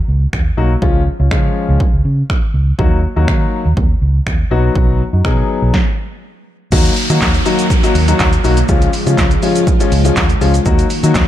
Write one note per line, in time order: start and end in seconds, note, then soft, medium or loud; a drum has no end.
0.08 0.25 C#2 medium
0.33 0.50 D#2 medium
0.33 finger snap medium
0.33 kick loud
0.57 0.74 B1 medium
0.57 0.70 F#3 medium
0.57 0.70 A#3 medium
0.57 0.70 D#4 medium
0.57 0.70 F#4 medium
0.82 1.08 C#2 loud
0.82 1.00 F3 medium
0.82 1.00 G#3 medium
0.82 1.00 C#4 medium
0.82 1.00 F4 loud
0.82 kick loud
1.19 1.28 C#2 medium
1.19 1.25 C#4 soft
1.19 1.25 F4 medium
1.31 1.48 C#3 loud
1.31 1.78 F3 medium
1.31 1.79 G#3 medium
1.31 1.79 C#4 medium
1.31 1.79 F4 medium
1.31 finger snap loud
1.31 kick loud
1.69 1.77 C#2 medium
1.80 kick loud
1.93 2.01 C#2 medium
2.05 2.22 C#3 loud
2.30 finger snap loud
2.30 kick loud
2.54 2.71 C#2 medium
2.79 3.05 D#2 loud
2.79 2.97 F#3 medium
2.79 2.97 A#3 medium
2.79 2.97 D#4 medium
2.79 2.97 F#4 medium
2.79 kick loud
3.16 3.24 D#2 medium
3.16 3.63 F#3 medium
3.16 3.64 A#3 medium
3.16 3.64 D#4 medium
3.16 3.64 F#4 medium
3.28 3.45 D#3 loud
3.28 finger snap loud
3.28 kick loud
3.66 3.73 D#2 medium
3.77 3.94 D#2 medium
3.77 kick loud
4.02 4.19 C#2 medium
4.27 4.43 D#2 medium
4.27 finger snap loud
4.27 kick loud
4.51 4.68 B1 medium
4.51 5.00 F#3 medium
4.51 5.00 B3 medium
4.51 5.00 D#4 medium
4.51 5.00 F#4 loud
4.75 5.01 B1 loud
4.75 kick loud
5.13 5.21 F#2 medium
5.13 5.19 D#4 soft
5.13 5.19 F#4 medium
5.24 5.42 B2 loud
5.24 5.72 F#3 medium
5.24 5.72 B3 medium
5.24 5.72 D#4 medium
5.24 5.72 G#4 medium
5.24 finger snap loud
5.24 kick loud
5.62 5.70 B1 medium
5.74 kick loud
5.74 snare medium
6.72 6.89 D#2 loud
6.72 8.67 D#3 medium
6.72 6.90 F#3 medium
6.72 8.67 F#3 medium
6.72 6.90 A#3 medium
6.72 8.67 A#3 medium
6.72 6.90 D#4 medium
6.72 8.67 F#4 medium
6.72 6.90 F#4 loud
6.72 kick loud
6.72 crash loud
6.72 downlifter medium
6.72 shaker medium
6.85 closed hi-hat medium
6.85 shaker medium
6.96 open hi-hat medium
6.96 shaker medium
7.09 7.18 D#3 loud
7.09 7.27 F#3 medium
7.09 7.27 A#3 medium
7.09 7.27 D#4 medium
7.09 7.27 F#4 medium
7.09 closed hi-hat medium
7.09 shaker medium
7.21 7.38 D#2 loud
7.21 kick loud
7.21 snare loud
7.21 clap loud
7.21 shaker medium
7.34 closed hi-hat medium
7.34 shaker soft
7.45 7.64 F#3 medium
7.45 7.64 A#3 medium
7.45 7.64 D#4 medium
7.45 7.64 F#4 medium
7.45 open hi-hat medium
7.45 shaker medium
7.59 closed hi-hat medium
7.59 shaker medium
7.70 kick loud
7.70 shaker medium
7.83 7.95 F#3 medium
7.83 7.95 A#3 medium
7.83 7.95 D#4 medium
7.83 7.95 F#4 loud
7.83 closed hi-hat medium
7.83 shaker medium
7.95 8.12 D#2 medium
7.95 open hi-hat medium
7.95 shaker medium
8.08 8.25 F#3 medium
8.08 8.25 A#3 medium
8.08 8.26 D#4 medium
8.08 8.26 F#4 loud
8.08 closed hi-hat medium
8.08 shaker medium
8.20 8.37 D#2 medium
8.20 kick loud
8.20 snare medium
8.20 clap loud
8.20 shaker medium
8.33 closed hi-hat medium
8.33 shaker medium
8.44 8.61 B1 loud
8.44 8.57 F#3 medium
8.44 8.57 A#3 medium
8.44 8.57 D#4 medium
8.44 8.57 F#4 loud
8.44 open hi-hat medium
8.44 shaker medium
8.57 closed hi-hat medium
8.57 shaker medium
8.69 8.86 C#2 loud
8.69 10.64 C#3 medium
8.69 8.87 F3 medium
8.69 10.64 F3 medium
8.69 10.64 G#3 medium
8.69 8.87 G#3 medium
8.69 8.87 C#4 medium
8.69 10.64 F4 medium
8.69 8.87 F4 loud
8.69 kick loud
8.69 shaker medium
8.82 closed hi-hat medium
8.82 shaker medium
8.93 open hi-hat medium
8.93 shaker medium
9.06 9.14 C#3 medium
9.06 9.24 F3 medium
9.06 9.24 G#3 medium
9.06 9.24 C#4 medium
9.06 9.24 F4 medium
9.06 closed hi-hat medium
9.06 shaker medium
9.18 9.35 C#2 medium
9.18 kick loud
9.18 snare medium
9.18 clap loud
9.18 shaker medium
9.31 closed hi-hat soft
9.31 shaker medium
9.42 9.61 F3 medium
9.42 9.61 G#3 medium
9.42 9.61 C#4 medium
9.42 9.61 F4 loud
9.42 open hi-hat medium
9.42 shaker medium
9.55 closed hi-hat medium
9.55 shaker medium
9.67 kick loud
9.67 shaker medium
9.80 9.91 F3 medium
9.80 9.91 G#3 medium
9.80 9.91 C#4 medium
9.80 9.92 F4 loud
9.80 closed hi-hat medium
9.80 shaker medium
9.92 10.09 C#2 loud
9.92 open hi-hat medium
9.92 shaker medium
10.05 10.22 F3 medium
10.05 10.22 G#3 medium
10.05 10.22 C#4 medium
10.05 10.22 F4 medium
10.05 closed hi-hat medium
10.05 shaker medium
10.16 10.33 D#2 loud
10.16 kick loud
10.16 snare medium
10.16 clap loud
10.16 shaker medium
10.29 closed hi-hat medium
10.29 shaker soft
10.41 10.58 C#2 medium
10.41 10.53 F3 medium
10.41 10.54 G#3 medium
10.41 10.54 C#4 medium
10.41 10.54 F4 loud
10.41 open hi-hat medium
10.41 shaker soft
10.54 closed hi-hat medium
10.54 shaker medium
10.65 10.83 D#2 loud
10.65 11.28 D#3 medium
10.65 11.28 F#3 medium
10.65 10.84 F#3 medium
10.65 11.28 A#3 medium
10.65 10.84 A#3 medium
10.65 10.84 D#4 medium
10.65 11.28 F#4 medium
10.65 10.84 F#4 loud
10.65 kick loud
10.65 shaker medium
10.79 closed hi-hat medium
10.79 shaker medium
10.90 open hi-hat medium
10.90 shaker medium
11.03 11.11 D#3 medium
11.03 11.20 F#3 medium
11.03 11.21 A#3 medium
11.03 11.21 D#4 medium
11.03 11.21 F#4 medium
11.03 closed hi-hat medium
11.03 shaker medium
11.15 11.28 D#2 loud
11.15 kick loud
11.15 snare loud
11.15 clap loud
11.15 shaker medium